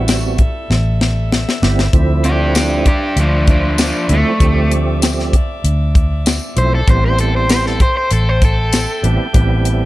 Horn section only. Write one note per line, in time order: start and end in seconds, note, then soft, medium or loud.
0.00 1.89 G3 medium
0.00 1.90 A4 medium
0.00 6.83 E5 medium
1.93 6.83 F3 medium
1.93 6.83 D5 medium
6.88 9.85 A4 medium
6.88 9.85 E5 medium
6.88 9.85 G5 medium